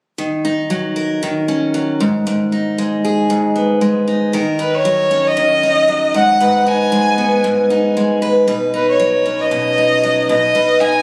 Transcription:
0.18 D#3
0.45 D#4
0.70 F#3
0.96 A#4
1.23 D#3
1.48 C#4
1.74 F#3
2.00 G#2
2.27 G#2
2.52 D#4
2.78 G#3
3.05 G#4
3.30 G#2
3.56 B3
3.81 G#3
4.08 D#4
4.33 D#3 A#4
4.59 D#4 B4
4.75 C#5
4.85 F#3
5.11 C#4
5.27 D#5
5.37 D#3
5.63 D#4
5.88 F#3
6.14 G#2 F#5
6.40 G#2 B4
6.67 D#4 G#5
6.92 G#3
7.18 B3
7.44 G#2
7.70 D#4
7.97 G#3
8.22 B4
8.48 B2 B4
8.74 D#4 B4
8.89 C#5
9.00 F#3
9.26 C#4
9.41 D#5
9.51 B2
9.78 D#4
10.03 F#3
10.29 B2 D#5
10.55 B2 B4
10.81 D#4 G#5

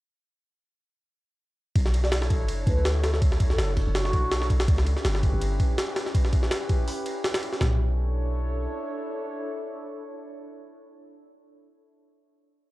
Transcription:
1.75 B1 D4 E4 A4 C#5, kick, ride
1.86 snare
1.94 ride
2.04 D5, snare
2.12 D5, snare, ride
2.22 snare
2.30 kick, ride
2.40 F#1
2.48 ride
2.67 D2 B4, kick, ride
2.85 snare, ride
3.04 A4, snare, ride
3.14 A4, snare
3.22 D4 E4 A4 C#5, kick, ride
3.32 snare
3.40 kick, ride
3.50 A4, snare
3.58 F#1, snare, ride
3.77 kick, ride
3.87 F#1
3.95 F#4, snare, ride
4.05 snare
4.13 B1, kick, ride
4.32 snare, ride
4.42 snare
4.50 kick, ride
4.60 snare, ride
4.68 C#2 C#4 E4 G4 B4, kick, ride
4.78 snare
4.87 ride
4.97 snare
5.05 G1, snare, ride
5.15 snare
5.23 kick, ride
5.33 G1
5.42 ride
5.60 kick, ride
5.78 snare, ride
5.96 snare, ride
6.06 snare
6.14 C#4 E4 G4 B4, kick, ride
6.25 snare
6.33 kick, ride
6.43 snare
6.51 snare, ride
6.69 kick, ride
6.88 open hi-hat
7.06 ride
7.24 snare, ride
7.34 snare, ride
7.43 ride
7.53 snare
7.61 B1 D4 E4 A4 C#5, snare, floor tom

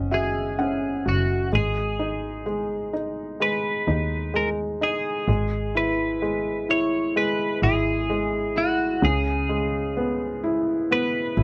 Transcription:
Already playing: F#1 C#3 C#4 F#4 B4 C#5 D#5
0.11 F#4 G#4 E5
0.59 C#4 F#5
1.06 F#1 F#4
1.52 G#1 G#3 G#4
1.99 D#4
2.46 G#3
2.93 D#4
3.40 G#3 B4
3.87 D#2 D#4
4.34 G#3 A#4
4.81 D#4 G#4
5.28 G#1 G#3
5.75 E4 B4
6.22 G#3
6.69 E4 C#5
7.16 G#3 B4
7.62 G#1 E4 G#4
8.10 G#3
8.56 E4 F#4
9.02 C#2 C#3 G#4
9.49 G#3
9.97 B3
10.44 E4
10.91 B3 B4
11.37 G#1 E4

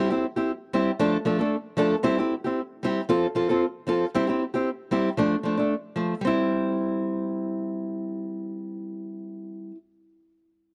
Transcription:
0.10 C4 E4 G4
0.36 C4 E4 G4
0.73 G3 C4 E4 G4
0.99 F3 A3 D4 A4
1.25 F3 A3 D4 A4
1.39 A3 D4 A4
1.77 F3 A3 D4 A4
2.03 G3 C4 E4 G4
2.18 C4 E4 G4
2.44 C4 E4 G4
2.83 G3 C4 E4 G4
3.09 F3 C4 F4 A4
3.35 F3 C4 F4 A4
3.49 C4 F4 A4
3.87 F3 C4 F4 A4
4.14 G3 C4 E4 G4
4.27 C4 E4 G4
4.54 C4 E4 G4
4.91 G3 C4 E4 G4
5.17 F3 A3 D4
5.43 F3 A3 D4
5.57 A3 D4
5.96 F3 A3
6.21 G3 C4
6.27 E4

